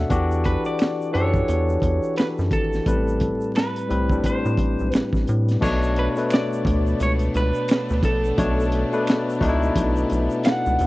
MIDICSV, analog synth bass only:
0, 0, Header, 1, 2, 480
1, 0, Start_track
1, 0, Tempo, 689655
1, 72, Time_signature, 4, 2, 24, 8
1, 7564, End_track
2, 0, Start_track
2, 0, Title_t, "Analog synth bass"
2, 0, Program_c, 0, 38
2, 75, Note_on_c, 0, 40, 101
2, 394, Note_off_c, 0, 40, 0
2, 800, Note_on_c, 0, 42, 76
2, 998, Note_off_c, 0, 42, 0
2, 1037, Note_on_c, 0, 40, 91
2, 1236, Note_off_c, 0, 40, 0
2, 1268, Note_on_c, 0, 40, 90
2, 1390, Note_off_c, 0, 40, 0
2, 1662, Note_on_c, 0, 42, 89
2, 1740, Note_off_c, 0, 42, 0
2, 1748, Note_on_c, 0, 32, 86
2, 1950, Note_off_c, 0, 32, 0
2, 1994, Note_on_c, 0, 33, 95
2, 2314, Note_off_c, 0, 33, 0
2, 2719, Note_on_c, 0, 36, 92
2, 2917, Note_off_c, 0, 36, 0
2, 3101, Note_on_c, 0, 45, 86
2, 3179, Note_off_c, 0, 45, 0
2, 3189, Note_on_c, 0, 33, 82
2, 3310, Note_off_c, 0, 33, 0
2, 3346, Note_on_c, 0, 35, 87
2, 3422, Note_off_c, 0, 35, 0
2, 3442, Note_on_c, 0, 33, 41
2, 3497, Note_off_c, 0, 33, 0
2, 3574, Note_on_c, 0, 33, 88
2, 3655, Note_off_c, 0, 33, 0
2, 3680, Note_on_c, 0, 45, 100
2, 3877, Note_off_c, 0, 45, 0
2, 3915, Note_on_c, 0, 35, 115
2, 4234, Note_off_c, 0, 35, 0
2, 4631, Note_on_c, 0, 38, 104
2, 4832, Note_off_c, 0, 38, 0
2, 4876, Note_on_c, 0, 37, 99
2, 5075, Note_off_c, 0, 37, 0
2, 5116, Note_on_c, 0, 37, 111
2, 5235, Note_off_c, 0, 37, 0
2, 5502, Note_on_c, 0, 38, 100
2, 5580, Note_off_c, 0, 38, 0
2, 5591, Note_on_c, 0, 34, 96
2, 5792, Note_off_c, 0, 34, 0
2, 5836, Note_on_c, 0, 35, 107
2, 6155, Note_off_c, 0, 35, 0
2, 6552, Note_on_c, 0, 37, 96
2, 6753, Note_off_c, 0, 37, 0
2, 6793, Note_on_c, 0, 35, 95
2, 6993, Note_off_c, 0, 35, 0
2, 7041, Note_on_c, 0, 35, 97
2, 7158, Note_off_c, 0, 35, 0
2, 7423, Note_on_c, 0, 37, 91
2, 7501, Note_off_c, 0, 37, 0
2, 7520, Note_on_c, 0, 39, 104
2, 7564, Note_off_c, 0, 39, 0
2, 7564, End_track
0, 0, End_of_file